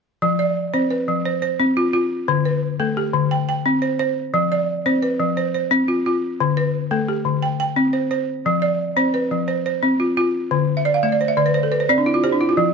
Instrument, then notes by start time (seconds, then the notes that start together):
balafon
0.22 F3
0.39 D5
0.74 C4 C5
0.91 B4
1.08 F3
1.25 C5
1.42 C5
1.60 C4
1.77 F4
1.93 F4
2.28 D3
2.45 B4
2.80 A3 A4
2.97 G4
3.14 D3
3.31 G5
3.49 G5
3.66 C4
3.82 C5
3.99 C5
4.34 F3
4.52 D5
4.86 C4 C5
5.03 B4
5.20 F3
5.37 C5
5.54 C5
5.71 C4
5.88 F4
6.06 F4
6.40 D3
6.57 B4
6.91 A3 A4
7.08 G4
7.25 D3
7.42 G5
7.60 G5
7.76 C4
7.93 C5
8.11 C5
8.46 F3
8.62 D5
8.97 C4 C5
9.14 B4
9.31 F3
9.48 C5
9.66 C5
9.83 C4
10.00 F4
10.17 F4
10.51 D3
10.77 E5
10.85 D5
10.94 F5
11.03 A3 E5
11.12 D5
11.21 C5
11.28 E5
11.37 D3 D5
11.46 B4
11.54 C5
11.63 A4
11.72 B4
11.80 C5
11.89 C4 D5
11.98 D4
12.06 E4
12.14 F4
12.24 G4 C5
12.32 D4
12.41 E4
12.49 F4
12.57 F3